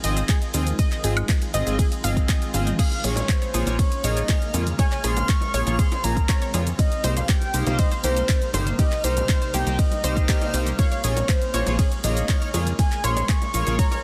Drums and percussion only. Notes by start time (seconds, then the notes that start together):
0.04 open hi-hat, shaker
0.17 closed hi-hat, shaker
0.29 kick, clap, closed hi-hat, ride, shaker
0.42 closed hi-hat, shaker
0.54 open hi-hat, shaker
0.67 closed hi-hat, shaker
0.79 kick, closed hi-hat, ride, shaker
0.92 clap, closed hi-hat, shaker
1.04 open hi-hat, shaker
1.17 closed hi-hat, high woodblock, shaker
1.29 kick, clap, closed hi-hat, ride, shaker
1.42 closed hi-hat, shaker
1.54 open hi-hat, shaker
1.67 closed hi-hat, shaker
1.79 kick, closed hi-hat, ride, shaker
1.92 closed hi-hat, shaker
2.04 open hi-hat, shaker
2.17 kick, closed hi-hat, shaker
2.29 kick, clap, closed hi-hat, ride, shaker
2.42 closed hi-hat, shaker
2.54 open hi-hat, high tom, shaker
2.67 closed hi-hat, mid tom, shaker
2.79 kick, closed hi-hat, crash, ride, shaker
2.92 closed hi-hat, high bongo, shaker
3.04 open hi-hat, shaker
3.16 closed hi-hat, high bongo, low conga, shaker
3.29 kick, clap, closed hi-hat, ride, shaker
3.42 closed hi-hat, high bongo, shaker
3.54 open hi-hat, shaker
3.66 closed hi-hat, high bongo, high conga, shaker
3.79 kick, closed hi-hat, ride, shaker
3.92 closed hi-hat, shaker
4.04 open hi-hat, high bongo, high conga, shaker
4.17 closed hi-hat, shaker
4.29 kick, clap, closed hi-hat, ride, high bongo, shaker
4.42 closed hi-hat, shaker
4.54 open hi-hat, high bongo, low conga, shaker
4.67 closed hi-hat, high conga, shaker
4.79 kick, closed hi-hat, ride, high bongo, shaker
4.92 clap, closed hi-hat, shaker
5.04 open hi-hat, shaker
5.17 closed hi-hat, high bongo, low conga, shaker
5.29 kick, clap, closed hi-hat, ride, shaker
5.41 closed hi-hat, high bongo, shaker
5.54 open hi-hat, shaker
5.66 closed hi-hat, high bongo, high conga, shaker
5.79 kick, closed hi-hat, ride, shaker
5.92 closed hi-hat, high bongo, shaker
6.04 open hi-hat, high conga, shaker
6.17 kick, closed hi-hat, shaker
6.29 kick, clap, closed hi-hat, ride, high bongo, shaker
6.42 closed hi-hat, shaker
6.54 open hi-hat, high bongo, shaker
6.66 closed hi-hat, high conga, shaker
6.79 kick, closed hi-hat, ride, high bongo, shaker
6.92 closed hi-hat, shaker
7.04 open hi-hat, high bongo, shaker
7.17 closed hi-hat, low conga, shaker
7.29 kick, clap, closed hi-hat, ride, shaker
7.41 closed hi-hat, high bongo, shaker
7.54 open hi-hat, shaker
7.67 closed hi-hat, high bongo, high conga, shaker
7.79 kick, closed hi-hat, ride, shaker
7.91 closed hi-hat, high bongo, shaker
8.04 open hi-hat, high conga, shaker
8.17 closed hi-hat, high bongo, shaker
8.29 kick, clap, closed hi-hat, ride, shaker
8.42 closed hi-hat, shaker
8.53 open hi-hat, high bongo, low conga, shaker
8.66 closed hi-hat, high conga, shaker
8.79 kick, closed hi-hat, ride, high bongo, shaker
8.92 clap, closed hi-hat, shaker
9.04 open hi-hat, high bongo, shaker
9.17 closed hi-hat, low conga, shaker
9.29 kick, clap, closed hi-hat, ride, high bongo, shaker
9.42 closed hi-hat, shaker
9.54 open hi-hat, shaker
9.66 closed hi-hat, high bongo, high conga, shaker
9.79 kick, closed hi-hat, ride, shaker
9.91 closed hi-hat, high bongo, shaker
10.03 open hi-hat, high conga, shaker
10.17 kick, closed hi-hat, high bongo, shaker
10.29 kick, clap, closed hi-hat, ride, shaker
10.41 closed hi-hat, high bongo, shaker
10.54 open hi-hat, shaker
10.66 closed hi-hat, high conga, shaker
10.79 kick, closed hi-hat, ride, shaker
10.92 closed hi-hat, high bongo, shaker
11.04 open hi-hat, shaker
11.16 closed hi-hat, high bongo, low conga, shaker
11.29 kick, clap, closed hi-hat, ride, shaker
11.42 closed hi-hat, high bongo, shaker
11.54 open hi-hat, shaker
11.66 closed hi-hat, high bongo, high conga, shaker
11.79 kick, closed hi-hat, ride, shaker
11.92 closed hi-hat, shaker
12.04 open hi-hat, high bongo, high conga, shaker
12.17 closed hi-hat, shaker
12.29 kick, clap, closed hi-hat, ride, high bongo, shaker
12.42 closed hi-hat, shaker
12.54 open hi-hat, high bongo, low conga, shaker
12.67 closed hi-hat, high conga, shaker
12.79 kick, closed hi-hat, ride, high bongo, shaker
12.92 clap, closed hi-hat, shaker
13.04 open hi-hat, shaker
13.16 closed hi-hat, high bongo, low conga, shaker
13.29 kick, clap, closed hi-hat, ride, shaker
13.42 closed hi-hat, high bongo, shaker
13.54 open hi-hat, shaker
13.67 closed hi-hat, high bongo, high conga, shaker
13.79 kick, closed hi-hat, ride, shaker
13.91 closed hi-hat, high bongo, shaker